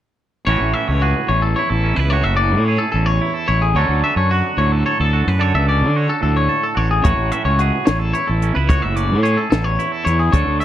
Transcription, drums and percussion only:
0, 0, Header, 1, 2, 480
1, 0, Start_track
1, 0, Key_signature, 3, "major"
1, 0, Tempo, 548948
1, 405, Time_signature, 6, 3, 24, 8
1, 9311, End_track
2, 0, Start_track
2, 0, Title_t, "Drums"
2, 6162, Note_on_c, 9, 42, 74
2, 6164, Note_on_c, 9, 36, 87
2, 6249, Note_off_c, 9, 42, 0
2, 6252, Note_off_c, 9, 36, 0
2, 6399, Note_on_c, 9, 42, 59
2, 6486, Note_off_c, 9, 42, 0
2, 6638, Note_on_c, 9, 42, 50
2, 6726, Note_off_c, 9, 42, 0
2, 6880, Note_on_c, 9, 38, 95
2, 6880, Note_on_c, 9, 42, 73
2, 6967, Note_off_c, 9, 42, 0
2, 6968, Note_off_c, 9, 38, 0
2, 7123, Note_on_c, 9, 42, 54
2, 7210, Note_off_c, 9, 42, 0
2, 7365, Note_on_c, 9, 42, 54
2, 7452, Note_off_c, 9, 42, 0
2, 7603, Note_on_c, 9, 36, 88
2, 7605, Note_on_c, 9, 42, 71
2, 7691, Note_off_c, 9, 36, 0
2, 7693, Note_off_c, 9, 42, 0
2, 7841, Note_on_c, 9, 42, 55
2, 7928, Note_off_c, 9, 42, 0
2, 8091, Note_on_c, 9, 42, 47
2, 8178, Note_off_c, 9, 42, 0
2, 8325, Note_on_c, 9, 38, 93
2, 8325, Note_on_c, 9, 42, 64
2, 8412, Note_off_c, 9, 42, 0
2, 8413, Note_off_c, 9, 38, 0
2, 8565, Note_on_c, 9, 42, 53
2, 8653, Note_off_c, 9, 42, 0
2, 8804, Note_on_c, 9, 42, 54
2, 8892, Note_off_c, 9, 42, 0
2, 9037, Note_on_c, 9, 36, 98
2, 9037, Note_on_c, 9, 42, 72
2, 9124, Note_off_c, 9, 42, 0
2, 9125, Note_off_c, 9, 36, 0
2, 9278, Note_on_c, 9, 42, 54
2, 9311, Note_off_c, 9, 42, 0
2, 9311, End_track
0, 0, End_of_file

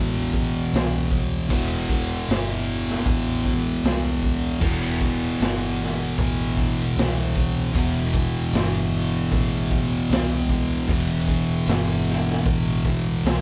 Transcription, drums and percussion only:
0, 0, Header, 1, 2, 480
1, 0, Start_track
1, 0, Key_signature, 1, "minor"
1, 0, Tempo, 782269
1, 920, Time_signature, 4, 2, 24, 8
1, 8230, End_track
2, 0, Start_track
2, 0, Title_t, "Drums"
2, 204, Note_on_c, 9, 36, 79
2, 266, Note_off_c, 9, 36, 0
2, 448, Note_on_c, 9, 46, 64
2, 464, Note_on_c, 9, 38, 119
2, 509, Note_off_c, 9, 46, 0
2, 526, Note_off_c, 9, 38, 0
2, 684, Note_on_c, 9, 36, 89
2, 745, Note_off_c, 9, 36, 0
2, 922, Note_on_c, 9, 36, 122
2, 924, Note_on_c, 9, 46, 77
2, 984, Note_off_c, 9, 36, 0
2, 986, Note_off_c, 9, 46, 0
2, 1162, Note_on_c, 9, 36, 99
2, 1223, Note_off_c, 9, 36, 0
2, 1402, Note_on_c, 9, 46, 72
2, 1418, Note_on_c, 9, 38, 113
2, 1463, Note_off_c, 9, 46, 0
2, 1479, Note_off_c, 9, 38, 0
2, 1776, Note_on_c, 9, 38, 34
2, 1837, Note_off_c, 9, 38, 0
2, 1874, Note_on_c, 9, 46, 60
2, 1877, Note_on_c, 9, 36, 109
2, 1935, Note_off_c, 9, 46, 0
2, 1939, Note_off_c, 9, 36, 0
2, 2115, Note_on_c, 9, 36, 77
2, 2176, Note_off_c, 9, 36, 0
2, 2350, Note_on_c, 9, 46, 63
2, 2367, Note_on_c, 9, 38, 119
2, 2411, Note_off_c, 9, 46, 0
2, 2428, Note_off_c, 9, 38, 0
2, 2593, Note_on_c, 9, 36, 86
2, 2654, Note_off_c, 9, 36, 0
2, 2829, Note_on_c, 9, 49, 120
2, 2832, Note_on_c, 9, 36, 126
2, 2890, Note_off_c, 9, 49, 0
2, 2893, Note_off_c, 9, 36, 0
2, 3072, Note_on_c, 9, 36, 84
2, 3134, Note_off_c, 9, 36, 0
2, 3312, Note_on_c, 9, 46, 59
2, 3328, Note_on_c, 9, 38, 113
2, 3373, Note_off_c, 9, 46, 0
2, 3390, Note_off_c, 9, 38, 0
2, 3570, Note_on_c, 9, 38, 31
2, 3631, Note_off_c, 9, 38, 0
2, 3793, Note_on_c, 9, 36, 124
2, 3793, Note_on_c, 9, 46, 56
2, 3854, Note_off_c, 9, 36, 0
2, 3854, Note_off_c, 9, 46, 0
2, 4034, Note_on_c, 9, 36, 80
2, 4095, Note_off_c, 9, 36, 0
2, 4275, Note_on_c, 9, 46, 62
2, 4291, Note_on_c, 9, 38, 116
2, 4336, Note_off_c, 9, 46, 0
2, 4353, Note_off_c, 9, 38, 0
2, 4514, Note_on_c, 9, 36, 92
2, 4575, Note_off_c, 9, 36, 0
2, 4753, Note_on_c, 9, 46, 76
2, 4754, Note_on_c, 9, 36, 127
2, 4815, Note_off_c, 9, 36, 0
2, 4815, Note_off_c, 9, 46, 0
2, 4994, Note_on_c, 9, 36, 103
2, 5055, Note_off_c, 9, 36, 0
2, 5232, Note_on_c, 9, 46, 66
2, 5249, Note_on_c, 9, 38, 119
2, 5293, Note_off_c, 9, 46, 0
2, 5310, Note_off_c, 9, 38, 0
2, 5717, Note_on_c, 9, 36, 102
2, 5717, Note_on_c, 9, 46, 57
2, 5778, Note_off_c, 9, 36, 0
2, 5778, Note_off_c, 9, 46, 0
2, 5959, Note_on_c, 9, 36, 85
2, 6021, Note_off_c, 9, 36, 0
2, 6198, Note_on_c, 9, 46, 69
2, 6215, Note_on_c, 9, 38, 124
2, 6260, Note_off_c, 9, 46, 0
2, 6276, Note_off_c, 9, 38, 0
2, 6439, Note_on_c, 9, 36, 91
2, 6500, Note_off_c, 9, 36, 0
2, 6675, Note_on_c, 9, 46, 67
2, 6679, Note_on_c, 9, 36, 125
2, 6737, Note_off_c, 9, 46, 0
2, 6740, Note_off_c, 9, 36, 0
2, 6920, Note_on_c, 9, 36, 88
2, 6982, Note_off_c, 9, 36, 0
2, 7159, Note_on_c, 9, 46, 67
2, 7176, Note_on_c, 9, 38, 120
2, 7221, Note_off_c, 9, 46, 0
2, 7237, Note_off_c, 9, 38, 0
2, 7421, Note_on_c, 9, 38, 35
2, 7482, Note_off_c, 9, 38, 0
2, 7544, Note_on_c, 9, 38, 34
2, 7605, Note_off_c, 9, 38, 0
2, 7641, Note_on_c, 9, 46, 56
2, 7644, Note_on_c, 9, 36, 117
2, 7703, Note_off_c, 9, 46, 0
2, 7705, Note_off_c, 9, 36, 0
2, 7884, Note_on_c, 9, 36, 85
2, 7946, Note_off_c, 9, 36, 0
2, 8124, Note_on_c, 9, 46, 64
2, 8140, Note_on_c, 9, 38, 124
2, 8185, Note_off_c, 9, 46, 0
2, 8202, Note_off_c, 9, 38, 0
2, 8230, End_track
0, 0, End_of_file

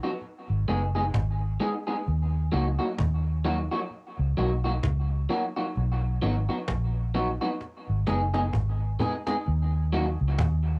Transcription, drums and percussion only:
0, 0, Header, 1, 2, 480
1, 0, Start_track
1, 0, Key_signature, -6, "minor"
1, 0, Tempo, 924499
1, 1071, Time_signature, 4, 2, 24, 8
1, 5603, End_track
2, 0, Start_track
2, 0, Title_t, "Cajon"
2, 11, Note_on_c, 9, 38, 26
2, 63, Note_off_c, 9, 38, 0
2, 110, Note_on_c, 9, 38, 41
2, 162, Note_off_c, 9, 38, 0
2, 247, Note_on_c, 9, 38, 24
2, 299, Note_off_c, 9, 38, 0
2, 348, Note_on_c, 9, 38, 39
2, 399, Note_off_c, 9, 38, 0
2, 495, Note_on_c, 9, 38, 23
2, 547, Note_off_c, 9, 38, 0
2, 590, Note_on_c, 9, 36, 107
2, 591, Note_on_c, 9, 38, 107
2, 642, Note_off_c, 9, 36, 0
2, 643, Note_off_c, 9, 38, 0
2, 729, Note_on_c, 9, 38, 26
2, 781, Note_off_c, 9, 38, 0
2, 1071, Note_on_c, 9, 38, 49
2, 1123, Note_off_c, 9, 38, 0
2, 1313, Note_on_c, 9, 38, 40
2, 1365, Note_off_c, 9, 38, 0
2, 1451, Note_on_c, 9, 38, 28
2, 1503, Note_off_c, 9, 38, 0
2, 1549, Note_on_c, 9, 38, 107
2, 1551, Note_on_c, 9, 36, 109
2, 1601, Note_off_c, 9, 38, 0
2, 1602, Note_off_c, 9, 36, 0
2, 1795, Note_on_c, 9, 38, 44
2, 1847, Note_off_c, 9, 38, 0
2, 1928, Note_on_c, 9, 38, 27
2, 1980, Note_off_c, 9, 38, 0
2, 2028, Note_on_c, 9, 38, 41
2, 2080, Note_off_c, 9, 38, 0
2, 2166, Note_on_c, 9, 38, 25
2, 2218, Note_off_c, 9, 38, 0
2, 2266, Note_on_c, 9, 38, 39
2, 2318, Note_off_c, 9, 38, 0
2, 2412, Note_on_c, 9, 38, 23
2, 2464, Note_off_c, 9, 38, 0
2, 2509, Note_on_c, 9, 36, 115
2, 2510, Note_on_c, 9, 38, 107
2, 2561, Note_off_c, 9, 36, 0
2, 2562, Note_off_c, 9, 38, 0
2, 2649, Note_on_c, 9, 38, 26
2, 2701, Note_off_c, 9, 38, 0
2, 2989, Note_on_c, 9, 38, 51
2, 3041, Note_off_c, 9, 38, 0
2, 3231, Note_on_c, 9, 38, 39
2, 3283, Note_off_c, 9, 38, 0
2, 3369, Note_on_c, 9, 38, 27
2, 3421, Note_off_c, 9, 38, 0
2, 3468, Note_on_c, 9, 38, 98
2, 3470, Note_on_c, 9, 36, 110
2, 3520, Note_off_c, 9, 38, 0
2, 3522, Note_off_c, 9, 36, 0
2, 3714, Note_on_c, 9, 38, 42
2, 3766, Note_off_c, 9, 38, 0
2, 3847, Note_on_c, 9, 38, 26
2, 3899, Note_off_c, 9, 38, 0
2, 3947, Note_on_c, 9, 38, 42
2, 3950, Note_off_c, 9, 38, 0
2, 3950, Note_on_c, 9, 38, 50
2, 4002, Note_off_c, 9, 38, 0
2, 4086, Note_on_c, 9, 38, 25
2, 4138, Note_off_c, 9, 38, 0
2, 4185, Note_on_c, 9, 38, 39
2, 4189, Note_off_c, 9, 38, 0
2, 4189, Note_on_c, 9, 38, 61
2, 4241, Note_off_c, 9, 38, 0
2, 4330, Note_on_c, 9, 38, 57
2, 4381, Note_off_c, 9, 38, 0
2, 4428, Note_on_c, 9, 36, 78
2, 4430, Note_off_c, 9, 36, 0
2, 4430, Note_on_c, 9, 36, 104
2, 4481, Note_off_c, 9, 36, 0
2, 4568, Note_on_c, 9, 38, 27
2, 4620, Note_off_c, 9, 38, 0
2, 4670, Note_on_c, 9, 36, 83
2, 4722, Note_off_c, 9, 36, 0
2, 4811, Note_on_c, 9, 38, 76
2, 4863, Note_off_c, 9, 38, 0
2, 4912, Note_on_c, 9, 38, 52
2, 4964, Note_off_c, 9, 38, 0
2, 5154, Note_on_c, 9, 38, 40
2, 5206, Note_off_c, 9, 38, 0
2, 5293, Note_on_c, 9, 38, 30
2, 5345, Note_off_c, 9, 38, 0
2, 5390, Note_on_c, 9, 38, 110
2, 5392, Note_on_c, 9, 36, 117
2, 5442, Note_off_c, 9, 38, 0
2, 5444, Note_off_c, 9, 36, 0
2, 5603, End_track
0, 0, End_of_file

